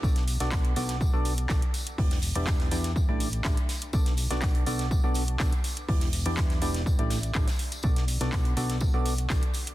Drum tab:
HH |-xox-xox--ox-xox|oxox-xox--ox-xox|-xox-xox--ox-xox|oxox-xox-xox-xox|
TB |x-x-x-x-x-x-x-x-|--x-x-x-x-x-x-x-|x-x-x-x-x-x-x-x-|--x-x-x-x-x-xx-x|
CP |----x-------x---|----x-------x---|----x-------x---|----x-------x---|
SD |-o-oo--o----o---|-o--oo-o----o-o-|-o-oo--o----o---|-o--oo-o--o--o--|
BD |o---o---o---o---|o---o---o---o---|o---o---o---o---|o---o---o---o---|

HH |-xox-xox--ox-xox|
TB |x-x-x-x-x-x-x-x-|
CP |----x-------x---|
SD |-o-oo--o----o---|
BD |o---o---o---o---|